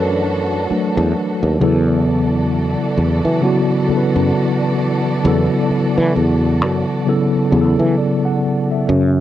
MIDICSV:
0, 0, Header, 1, 5, 480
1, 0, Start_track
1, 0, Tempo, 909091
1, 846, Time_signature, 4, 2, 24, 8
1, 4860, End_track
2, 0, Start_track
2, 0, Title_t, "String section"
2, 0, Program_c, 0, 48
2, 0, Note_on_c, 0, 52, 75
2, 0, Note_on_c, 0, 62, 67
2, 0, Note_on_c, 0, 66, 67
2, 0, Note_on_c, 0, 69, 85
2, 823, Note_off_c, 0, 62, 0
2, 824, Note_off_c, 0, 52, 0
2, 824, Note_off_c, 0, 66, 0
2, 824, Note_off_c, 0, 69, 0
2, 847, Note_on_c, 0, 52, 76
2, 847, Note_on_c, 0, 66, 66
2, 848, Note_on_c, 0, 69, 86
2, 848, Note_on_c, 0, 74, 68
2, 4665, Note_off_c, 0, 52, 0
2, 4666, Note_off_c, 0, 66, 0
2, 4666, Note_off_c, 0, 69, 0
2, 4666, Note_off_c, 0, 74, 0
2, 4860, End_track
3, 0, Start_track
3, 0, Title_t, "Tine electric piano"
3, 0, Program_c, 1, 4
3, 0, Control_c, 1, 64, 127
3, 0, Note_on_c, 1, 54, 58
3, 0, Note_on_c, 1, 57, 53
3, 0, Note_on_c, 1, 62, 65
3, 0, Note_on_c, 1, 69, 81
3, 0, Note_on_c, 1, 70, 92
3, 0, Note_on_c, 1, 71, 84
3, 0, Note_on_c, 1, 73, 89
3, 0, Note_on_c, 1, 74, 86
3, 348, Note_off_c, 1, 69, 0
3, 368, Note_off_c, 1, 54, 0
3, 369, Note_off_c, 1, 57, 0
3, 371, Note_off_c, 1, 62, 0
3, 374, Note_on_c, 1, 54, 47
3, 375, Note_on_c, 1, 57, 45
3, 377, Note_on_c, 1, 62, 54
3, 589, Note_off_c, 1, 54, 0
3, 589, Note_off_c, 1, 57, 0
3, 590, Note_off_c, 1, 62, 0
3, 845, Note_on_c, 1, 49, 91
3, 848, Note_on_c, 1, 54, 83
3, 852, Control_c, 1, 64, 0
3, 853, Note_off_c, 1, 70, 0
3, 853, Note_on_c, 1, 59, 83
3, 854, Note_off_c, 1, 74, 0
3, 855, Note_off_c, 1, 73, 0
3, 857, Note_off_c, 1, 71, 0
3, 859, Note_on_c, 1, 64, 80
3, 863, Note_on_c, 1, 69, 99
3, 958, Control_c, 1, 64, 127
3, 1695, Note_off_c, 1, 49, 0
3, 1696, Note_off_c, 1, 54, 0
3, 1699, Note_off_c, 1, 59, 0
3, 1702, Note_off_c, 1, 64, 0
3, 1704, Note_off_c, 1, 69, 0
3, 1803, Note_on_c, 1, 49, 88
3, 1807, Note_on_c, 1, 54, 86
3, 1812, Note_on_c, 1, 59, 82
3, 1819, Note_on_c, 1, 64, 87
3, 1823, Note_on_c, 1, 66, 104
3, 2018, Note_off_c, 1, 49, 0
3, 2020, Note_off_c, 1, 54, 0
3, 2023, Note_off_c, 1, 59, 0
3, 2026, Note_off_c, 1, 64, 0
3, 2028, Note_off_c, 1, 66, 0
3, 2041, Note_on_c, 1, 49, 83
3, 2047, Note_on_c, 1, 54, 72
3, 2052, Note_on_c, 1, 59, 75
3, 2058, Note_on_c, 1, 64, 75
3, 2062, Note_on_c, 1, 69, 75
3, 2095, Note_off_c, 1, 69, 0
3, 2096, Note_on_c, 1, 71, 93
3, 2684, Note_off_c, 1, 49, 0
3, 2687, Note_off_c, 1, 54, 0
3, 2689, Note_off_c, 1, 59, 0
3, 2692, Note_off_c, 1, 64, 0
3, 2711, Note_off_c, 1, 71, 0
3, 2763, Note_on_c, 1, 49, 88
3, 2768, Note_on_c, 1, 54, 85
3, 2774, Note_on_c, 1, 59, 84
3, 2778, Note_on_c, 1, 64, 88
3, 2784, Note_on_c, 1, 69, 105
3, 3614, Note_off_c, 1, 49, 0
3, 3617, Note_off_c, 1, 54, 0
3, 3620, Note_off_c, 1, 59, 0
3, 3622, Note_off_c, 1, 64, 0
3, 3624, Note_off_c, 1, 69, 0
3, 3723, Note_on_c, 1, 49, 91
3, 3729, Note_on_c, 1, 54, 82
3, 3734, Note_on_c, 1, 59, 83
3, 3740, Note_on_c, 1, 64, 85
3, 3745, Note_on_c, 1, 69, 105
3, 3938, Note_off_c, 1, 49, 0
3, 3941, Note_off_c, 1, 54, 0
3, 3943, Note_off_c, 1, 59, 0
3, 3946, Note_off_c, 1, 64, 0
3, 3949, Note_off_c, 1, 69, 0
3, 3963, Note_on_c, 1, 49, 77
3, 3969, Note_on_c, 1, 54, 73
3, 3974, Note_on_c, 1, 59, 74
3, 3979, Note_on_c, 1, 64, 73
3, 3984, Note_on_c, 1, 68, 76
3, 4016, Note_off_c, 1, 68, 0
3, 4019, Note_on_c, 1, 69, 93
3, 4213, Note_on_c, 1, 74, 65
3, 4345, Note_off_c, 1, 74, 0
3, 4357, Note_on_c, 1, 78, 73
3, 4581, Note_off_c, 1, 78, 0
3, 4601, Note_on_c, 1, 76, 65
3, 4605, Note_off_c, 1, 49, 0
3, 4608, Note_off_c, 1, 54, 0
3, 4610, Note_off_c, 1, 59, 0
3, 4613, Note_off_c, 1, 64, 0
3, 4633, Note_off_c, 1, 69, 0
3, 4692, Note_on_c, 1, 61, 94
3, 4693, Control_c, 1, 64, 0
3, 4701, Note_on_c, 1, 49, 77
3, 4774, Control_c, 1, 64, 127
3, 4823, Note_off_c, 1, 76, 0
3, 4860, Note_off_c, 1, 49, 0
3, 4860, Note_off_c, 1, 61, 0
3, 4860, End_track
4, 0, Start_track
4, 0, Title_t, "Fretless electric bass"
4, 0, Program_c, 2, 35
4, 0, Note_on_c, 2, 42, 89
4, 349, Note_off_c, 2, 42, 0
4, 514, Note_on_c, 2, 40, 100
4, 593, Note_off_c, 2, 40, 0
4, 754, Note_on_c, 2, 39, 90
4, 833, Note_off_c, 2, 39, 0
4, 851, Note_on_c, 2, 40, 101
4, 1450, Note_off_c, 2, 40, 0
4, 1571, Note_on_c, 2, 40, 89
4, 1688, Note_off_c, 2, 40, 0
4, 1715, Note_on_c, 2, 52, 90
4, 1794, Note_off_c, 2, 52, 0
4, 2195, Note_on_c, 2, 42, 88
4, 2274, Note_off_c, 2, 42, 0
4, 2771, Note_on_c, 2, 40, 112
4, 2888, Note_off_c, 2, 40, 0
4, 3156, Note_on_c, 2, 52, 97
4, 3234, Note_off_c, 2, 52, 0
4, 3253, Note_on_c, 2, 40, 95
4, 3493, Note_off_c, 2, 40, 0
4, 3493, Note_on_c, 2, 42, 93
4, 3609, Note_off_c, 2, 42, 0
4, 3972, Note_on_c, 2, 40, 98
4, 4088, Note_off_c, 2, 40, 0
4, 4115, Note_on_c, 2, 52, 96
4, 4194, Note_off_c, 2, 52, 0
4, 4693, Note_on_c, 2, 42, 108
4, 4860, Note_off_c, 2, 42, 0
4, 4860, End_track
5, 0, Start_track
5, 0, Title_t, "Muted fretless electric bass strokes"
5, 373, Note_on_c, 9, 29, 49
5, 426, Note_off_c, 9, 29, 0
5, 2053, Note_on_c, 9, 29, 51
5, 2106, Note_off_c, 9, 29, 0
5, 3013, Note_on_c, 9, 29, 47
5, 3066, Note_off_c, 9, 29, 0
5, 4860, End_track
0, 0, End_of_file